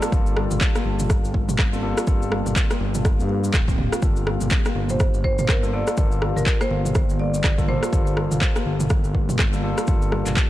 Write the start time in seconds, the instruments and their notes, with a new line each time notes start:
Already playing: analog synth pad A#3 G4 F5 A5
0.02 kalimba F4, cross-stick, cabasa
0.12 analog synth bass G1, tine electric piano G3 A#3 F4 A4, kick, cabasa
0.26 cabasa
0.37 kalimba G3, cross-stick
0.51 analog synth bass G1, mid tom, cabasa
0.61 kick, clap, cabasa
0.75 kalimba A#3, cross-stick, cabasa
0.85 analog synth bass G1, kalimba G3
0.99 mid tom, cabasa
1.10 kick, cross-stick, cabasa
1.24 analog synth bass G1, cabasa
1.34 kalimba G3, kick
1.49 kalimba G3, mid tom, cabasa
1.59 analog synth bass G1, kick, cross-stick, clap, cabasa
1.73 tine electric piano G3 A#3 F4 A4, kalimba C4, cabasa
1.83 tine electric piano G3 A#3 F4 A4
1.97 kalimba F4, cross-stick, cabasa
2.07 analog synth bass G1, tine electric piano G3 A#3 F4 A4, kick, cabasa
2.22 cabasa
2.32 kalimba G3, cross-stick
2.46 analog synth bass G1, mid tom, cabasa
2.56 kick, clap, cabasa
2.71 kalimba A#3, cross-stick, cabasa
2.80 analog synth bass G1, kalimba G3
2.95 mid tom, cabasa
3.05 kick, cross-stick, cabasa
3.19 analog synth bass G2, cabasa
3.29 kalimba G3
3.44 kalimba G3, cabasa
3.53 analog synth bass D1, kick, cross-stick, clap, cabasa
3.68 kalimba C4, kick, cabasa
3.78 mid tom
3.92 kalimba F4, cross-stick, cabasa
4.02 analog synth bass G1, tine electric piano G3 A#3 F4 A4, kick, cabasa
4.16 cabasa
4.27 kalimba G3, cross-stick
4.41 analog synth bass G1, mid tom, cabasa
4.50 kick, clap, cabasa
4.65 kalimba A#3, cross-stick, cabasa
4.75 analog synth bass G1, kalimba G3
4.89 marimba C5, mid tom, cabasa
5.00 kick, cross-stick, cabasa
5.14 analog synth bass G1, cabasa
5.24 kalimba G3, marimba C5, kick
5.39 kalimba G3, marimba C5, mid tom, cabasa
5.49 analog synth bass G1, marimba A#4, kick, cross-stick, clap, cabasa
5.63 tine electric piano G3 A#3 F4 A4, kalimba G3, cabasa
5.73 tine electric piano G3 A#3 F4 A4, marimba D5
5.87 kalimba F4, cross-stick, cabasa
5.97 analog synth bass G1, tine electric piano G3 A#3 F4 A4, kick, cabasa
6.12 cabasa
6.22 kalimba G3, cross-stick
6.36 analog synth bass G1, marimba A#4, mid tom, cabasa
6.46 kick, clap, cabasa
6.61 kalimba A#3, marimba C5, cross-stick, cabasa
6.71 analog synth bass G1, kalimba G3
6.85 mid tom, cabasa
6.95 kick, cross-stick, cabasa
7.10 analog synth bass G1, cabasa
7.20 kalimba G3, marimba D5
7.34 kalimba G3, cabasa
7.44 analog synth bass G1, kick, cross-stick, clap, cabasa
7.58 tine electric piano G3 A#3 F4 A4, kalimba G3, kick, cabasa
7.68 tine electric piano G3 A#3 F4 A4, marimba C5, mid tom
7.83 kalimba F4, cross-stick, cabasa
7.93 analog synth bass G1, tine electric piano G3 A#3 F4 A4, kick, cabasa
8.07 cabasa
8.17 kalimba G3, cross-stick
8.31 analog synth bass G1, mid tom, cabasa
8.41 kick, clap, cabasa
8.56 kalimba A#3, cross-stick, cabasa
8.66 analog synth bass G1, kalimba G3
8.80 mid tom, cabasa
8.90 kick, cross-stick, cabasa
9.04 analog synth bass G1, cabasa
9.14 kalimba G3, kick
9.29 kalimba G3, mid tom, cabasa
9.39 analog synth bass G1, kick, cross-stick, clap, cabasa
9.53 tine electric piano G3 A#3 F4 A4, kalimba G3, cabasa
9.63 tine electric piano G3 A#3 F4 A4
9.78 kalimba F4, cross-stick, cabasa
9.87 analog synth bass G1, tine electric piano G3 A#3 F4 A4, kick, cabasa
10.02 cabasa
10.12 kalimba G3, cross-stick
10.26 analog synth bass G1, clap, mid tom, cabasa
10.37 kick, clap, cabasa